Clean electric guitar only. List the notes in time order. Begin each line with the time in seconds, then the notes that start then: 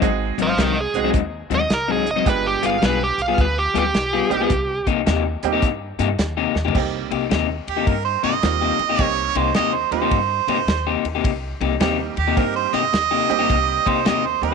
0.38 G#2 F#3 C4 D#4
0.58 G#2 F#3 C4 D#4
0.77 muted clean electric guitar stroke
1.04 G#2 F#3 C4 D#4
1.50 G#2 F#3 C4 D#4
1.61 muted clean electric guitar stroke
1.70 muted clean electric guitar stroke
1.88 G#2 F#3 C4 D#4
2.06 muted clean electric guitar stroke
2.16 G#2 F#3 C4 D#4
2.62 G3 B3 F4 G#4
2.81 G3 B3 F4 G#4
3.00 muted clean electric guitar stroke
3.28 G3 B3 F4 G#4
3.74 G3 B3 F4 G#4
3.85 muted clean electric guitar stroke
3.95 muted clean electric guitar stroke
4.13 G3 B3 F4 G#4
4.31 muted clean electric guitar stroke
4.41 G3 B3 F4 G#4
4.87 C3 A#3 D#4 G4
5.06 C3 A#3 D#4 G4
5.25 muted clean electric guitar stroke
5.53 C3 A#3 D#4 G4
5.99 C3 A#3 D#4 G4
6.10 muted clean electric guitar stroke
6.19 muted clean electric guitar stroke
6.37 C3 A#3 D#4 G4
6.55 muted clean electric guitar stroke
6.65 C3 A#3 D#4 G4
7.11 C3 A#3 D#4 G4
7.30 C3 A#3 D#4 G4
7.48 muted clean electric guitar stroke
7.76 C3 A#3 D#4 G4
8.23 C3 A#3 D#4 G4
8.33 muted clean electric guitar stroke
8.43 muted clean electric guitar stroke
8.61 C3 A#3 D#4 G4
8.80 muted clean electric guitar stroke
8.89 C3 A#3 D#4 G4
9.35 C3 A#3 D#4 G4
9.55 C3 A#3 D#4 G4
9.73 muted clean electric guitar stroke
10.02 C3 A#3 D#4 G4
10.48 C3 A#3 D#4 G4
10.59 muted clean electric guitar stroke
10.68 muted clean electric guitar stroke
10.87 C3 A#3 D#4 G4
11.05 muted clean electric guitar stroke
11.15 C3 A#3 D#4 G4
11.61 C3 A#3 D#4 G4
11.80 C3 A#3 D#4 G4
11.99 muted clean electric guitar stroke
12.27 C3 A#3 D#4 G4
12.73 C3 A#3 D#4 G4
12.83 muted clean electric guitar stroke
12.93 muted clean electric guitar stroke
13.11 C3 A#3 D#4 G4
13.29 muted clean electric guitar stroke
13.39 C3 A#3 D#4 G4
13.86 C3 A#3 D#4 G4
14.05 C3 A#3 D#4 G4
14.24 muted clean electric guitar stroke